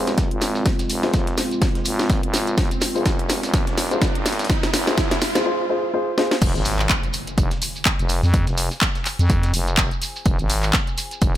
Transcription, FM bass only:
0.00 0.29 F1 medium
0.31 0.64 G#1 loud
0.90 1.12 F1 medium
1.14 1.36 F1 medium
1.86 2.21 G#1 medium
2.23 2.56 G#1 loud
2.58 2.69 F1 medium
2.95 3.41 F1 loud
3.43 3.65 F1 loud
3.67 4.13 F1 medium
4.15 4.48 G#1 loud
4.74 4.96 F1 medium
4.98 5.20 F1 loud
6.42 6.53 F1 loud
6.55 6.88 G#1 loud
7.38 7.49 F1 loud
7.99 8.21 F1 loud
8.23 8.45 F2 loud
8.47 8.69 F1 loud
9.19 9.52 F2 loud
9.54 9.89 F1 loud
10.26 10.37 F1 loud
10.39 10.72 G#1 loud
11.22 11.33 F1 loud

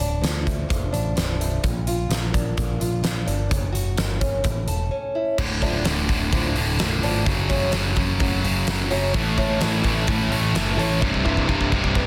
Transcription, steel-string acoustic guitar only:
0.00 0.92 D2 medium
0.00 0.91 D4 medium
0.21 0.68 F3 medium
0.45 1.39 A3 medium
0.69 1.14 F3 medium
0.92 1.63 D4 medium
1.15 1.63 F3 medium
1.40 1.63 A3 medium
1.64 2.81 A#2 medium
1.87 2.79 F4 medium
2.11 2.56 A#3 medium
2.34 3.25 D4 medium
2.57 3.02 A#3 medium
2.80 3.51 F4 medium
3.03 3.50 A#3 medium
3.26 3.50 D4 medium
3.49 4.43 F#2 medium
3.72 4.44 F#4 medium
3.96 4.44 A#3 medium
4.20 4.44 C#4 medium
4.44 5.38 A2 medium
4.67 5.38 A4 medium
4.91 5.38 C#4 medium
5.15 5.39 E4 medium
5.39 muted steel-string acoustic guitar stroke soft
5.62 5.84 D3 medium
5.62 5.84 F3 medium
5.62 5.85 A3 medium
5.62 5.85 D4 medium
5.85 muted steel-string acoustic guitar stroke soft
6.09 muted steel-string acoustic guitar stroke soft
6.32 6.56 D3 medium
6.32 6.56 F3 medium
6.32 6.55 A3 medium
6.32 6.55 D4 medium
6.56 muted steel-string acoustic guitar stroke soft
6.80 muted steel-string acoustic guitar stroke soft
7.03 7.26 D3 medium
7.03 7.26 F3 medium
7.03 7.25 A3 medium
7.03 7.27 D4 medium
7.26 muted steel-string acoustic guitar stroke soft
7.49 7.72 F#3 medium
7.49 7.72 A3 medium
7.49 7.72 C#4 medium
7.49 7.73 F#4 loud
7.73 muted steel-string acoustic guitar stroke soft
7.97 muted steel-string acoustic guitar stroke soft
8.20 8.43 F#3 medium
8.20 8.43 A3 medium
8.20 8.43 C#4 medium
8.20 8.43 F#4 medium
8.44 muted steel-string acoustic guitar stroke soft
8.67 muted steel-string acoustic guitar stroke soft
8.90 9.13 F#3 medium
8.90 9.12 A3 medium
8.90 9.13 C#4 medium
8.90 9.14 F#4 medium
9.13 muted steel-string acoustic guitar stroke soft
9.37 9.59 A3 medium
9.37 9.60 C#4 medium
9.37 9.60 E4 medium
9.37 9.61 A4 loud
9.61 muted steel-string acoustic guitar stroke soft
9.84 muted steel-string acoustic guitar stroke soft
10.08 10.30 A3 medium
10.08 10.30 C#4 medium
10.08 10.30 E4 loud
10.08 10.29 A4 loud
10.31 muted steel-string acoustic guitar stroke soft
10.54 muted steel-string acoustic guitar stroke soft
10.78 11.01 A3 medium
10.78 11.01 C#4 medium
10.78 11.01 E4 medium
10.78 11.01 A4 medium
11.01 muted steel-string acoustic guitar stroke soft
11.24 11.46 G2 medium
11.24 11.47 C3 medium
11.24 11.47 E3 medium
11.24 11.47 E4 loud
11.48 muted steel-string acoustic guitar stroke soft
11.72 muted steel-string acoustic guitar stroke medium
11.94 12.07 G2 medium
11.94 12.07 C3 medium
11.94 12.07 E3 loud
11.94 12.07 E4 medium

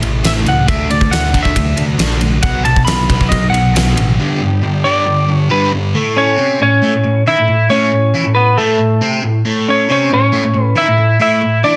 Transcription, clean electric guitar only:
0.26 0.32 E5 loud
0.48 0.69 F#5 loud
0.69 0.91 E5 medium
0.91 1.13 D5 medium
1.11 1.42 F#5 loud
1.43 1.84 E5 medium
2.43 2.64 F#5 medium
2.65 2.84 A5 loud
2.85 3.31 B5 loud
3.29 3.49 D#5 medium
3.50 4.13 F#5 medium
4.84 5.32 D5 loud
5.32 5.51 C#5 loud
5.51 5.71 B4 medium
6.17 6.57 C#4 medium
6.17 6.61 C#5 loud
6.62 7.23 C#4 medium
6.62 7.23 C#5 medium
7.27 7.68 E4 medium
7.27 7.72 E5 loud
7.70 8.32 C#4 medium
7.70 8.34 C#5 loud
8.35 8.56 B3 medium
8.35 8.58 B4 medium
8.57 9.19 A3 medium
8.57 9.19 A4 medium
9.69 9.88 C#4 medium
9.69 9.91 C#5 medium
9.90 10.10 C#4 medium
9.90 10.12 C#5 medium
10.13 10.74 C#4 medium
10.13 10.64 C#5 medium
10.64 10.80 B4 medium
10.77 11.18 E4 medium
10.77 11.21 E5 loud
11.22 11.62 E4 medium
11.22 11.66 E5 loud
11.64 11.76 D4 medium
11.64 11.76 D5 loud

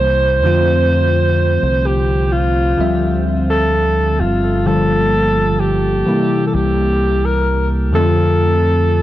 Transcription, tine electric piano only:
0.00 0.35 C3 medium
0.00 0.35 E3 medium
0.00 0.36 G3 medium
0.00 0.36 A#3 medium
0.00 0.36 E4 medium
0.43 2.69 D3 medium
0.43 2.70 F3 medium
0.43 2.70 A3 medium
0.43 2.70 C4 medium
0.43 2.71 F4 loud
2.78 4.57 D3 medium
2.78 4.57 F3 medium
2.78 4.58 G3 medium
2.78 4.58 C4 medium
2.78 4.58 E5 medium
4.65 5.97 D3 medium
4.65 5.98 F3 medium
4.65 5.98 G3 medium
4.65 5.98 A#3 medium
4.65 5.99 F4 medium
6.05 7.85 C3 medium
6.05 7.85 E3 medium
6.05 7.86 G3 medium
6.05 7.86 A#3 medium
6.05 7.86 E4 medium
7.93 9.02 D3 medium
7.93 9.02 F3 medium
7.93 9.02 A3 medium
7.93 9.02 C4 medium
7.93 9.02 F4 loud

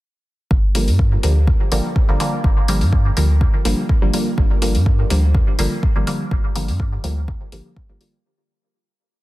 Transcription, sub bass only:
0.51 0.89 G1 loud
0.88 1.17 G2 loud
1.23 1.54 D2 medium
1.72 1.80 G1 loud
2.09 2.16 G1 loud
2.44 2.83 G1 loud
2.81 3.11 G2 loud
3.17 3.47 D2 medium
3.65 3.74 G1 loud
4.02 4.10 G1 loud
4.38 4.76 G1 loud
4.75 5.04 G2 loud
5.10 5.41 D2 medium
5.59 5.67 G1 loud
5.96 6.04 G1 loud
6.31 6.70 G1 loud
6.68 6.98 G2 loud
7.04 7.34 D2 medium
7.52 7.61 G1 loud
7.89 7.97 G1 loud

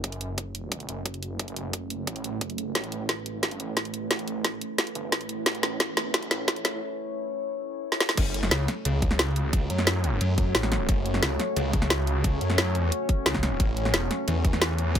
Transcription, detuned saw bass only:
0.04 0.87 F#1 loud
0.89 1.38 F#1 loud
1.39 1.89 F#1 loud
1.90 2.06 F#1 loud
2.07 2.40 A1 medium
2.41 2.74 F#1 medium
2.75 3.34 A1 loud
3.34 3.58 G#1 loud
3.60 4.09 A1 loud
4.11 4.60 A1 loud
4.95 5.11 G1 medium
5.12 5.45 A1 loud
5.46 6.30 A1 loud
6.31 6.80 A1 loud
8.17 8.50 F#1 loud
8.51 8.67 C#2 loud
8.85 9.69 C#2 loud
9.70 10.19 F#2 loud
10.21 10.53 F#2 medium
10.55 10.87 A1 loud
10.89 11.21 F#1 loud
11.23 11.38 C#2 medium
11.56 12.40 C#2 medium
12.41 12.91 F#2 loud
13.26 13.58 C#2 loud
13.60 13.92 A1 loud
13.94 14.09 E1 loud
14.28 14.99 E2 medium

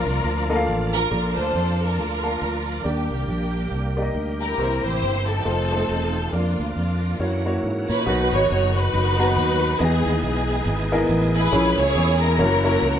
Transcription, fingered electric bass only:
0.06 0.22 C2 medium
0.24 0.68 D2 medium
0.68 1.05 A1 medium
1.11 1.33 A#1 medium
1.37 1.52 D2 medium
1.55 1.98 F2 medium
1.98 2.35 D2 medium
2.42 2.79 D2 medium
2.85 3.07 D#2 medium
3.11 3.26 C2 medium
3.28 3.65 A#1 medium
3.72 4.09 C2 medium
4.15 4.52 D2 medium
4.58 4.81 C2 medium
4.84 4.99 A1 medium
5.02 5.39 G1 medium
5.46 5.83 F1 medium
5.89 6.26 E1 medium
6.33 6.55 F2 medium
6.60 6.74 D2 medium
6.76 7.13 F2 medium
7.20 7.57 F#2 medium
7.63 7.85 G#2 medium
7.89 8.04 A#2 medium
8.07 8.29 B1 loud
8.33 8.47 G#1 medium
8.50 8.87 F#1 loud
8.93 9.38 F#1 loud
9.37 9.73 D#2 medium
9.80 10.02 E2 loud
10.06 10.20 D#2 loud
10.23 10.60 B1 medium
10.66 11.02 G#1 loud
11.09 11.46 A1 loud
11.53 11.74 A#1 loud
11.78 11.93 C#2 loud
11.96 12.40 E2 loud
12.39 12.75 F#1 loud
12.82 12.99 C#2 medium

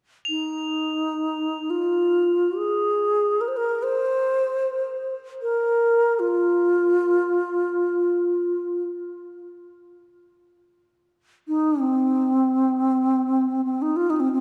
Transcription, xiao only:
0.29 1.72 D#4 medium
1.70 2.59 F4 medium
2.57 3.42 G#4 medium
3.41 3.49 A#4 medium
3.48 3.58 C5 medium
3.57 3.85 A#4 medium
3.83 5.14 C5 medium
5.42 6.21 A#4 medium
6.19 8.85 F4 medium
11.48 11.82 D#4 medium
11.81 13.64 C4 medium
13.65 13.84 C4 medium
13.82 13.98 D#4 medium
13.96 14.12 F4 medium
14.10 14.16 D#4 medium
14.16 14.32 C4 medium
14.16 14.21 D#4 medium
14.32 14.40 C4 medium

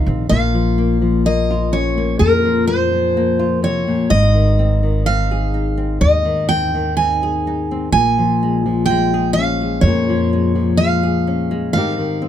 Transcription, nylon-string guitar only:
0.00 0.26 G#2 medium
0.00 0.32 D#3 medium
0.00 0.26 D#4 soft
0.00 1.49 F4 medium
0.08 0.25 C4 medium
0.30 2.20 A#2 medium
0.54 1.00 F3 soft
0.78 1.25 A#3 soft
1.02 2.44 F3 soft
1.26 1.97 A#3 medium
1.50 3.38 F4 medium
1.72 4.05 C#4 medium
1.98 2.69 A#3 soft
2.21 3.62 A#2 medium
2.45 2.91 F3 medium
2.70 3.17 A#3 medium
2.92 4.06 F3 medium
3.17 4.13 A#3 medium
3.39 4.11 F4 medium
3.63 3.87 C3 medium
3.87 4.11 A#2 medium
4.10 6.01 G#2 medium
4.34 4.82 D#3 medium
4.59 5.06 C4 soft
4.83 6.24 D#3 medium
5.07 5.76 C4 medium
5.31 7.23 G#4 medium
5.54 7.44 D#4 soft
5.77 6.49 C4 medium
6.02 7.87 G#2 medium
6.25 6.73 D#3 medium
6.51 6.97 C4 medium
6.74 7.93 D#3 medium
6.98 7.69 C4 medium
7.23 7.97 G#4 medium
7.47 7.88 D#4 medium
7.71 7.88 C4 medium
7.94 9.84 A#2 medium
8.18 8.64 F3 medium
8.43 8.89 G#3 medium
8.66 10.08 F3 medium
8.90 9.61 G#3 medium
9.14 11.02 G#4 medium
9.38 11.26 C#4 medium
9.62 10.32 G#3 medium
9.86 11.75 A#2 medium
10.09 10.54 F3 medium
10.33 10.78 G#3 medium
10.55 11.68 F3 medium
10.79 11.50 G#3 soft
11.03 11.68 G#4 medium
11.27 11.68 C#4 medium
11.51 11.74 G#3 medium
11.74 12.28 G#2 medium
11.74 11.97 D#3 medium
11.74 12.21 C4 medium
11.74 12.28 D#4 medium
11.74 12.28 G4 medium
11.98 12.28 D#3 medium
12.22 12.28 C4 medium

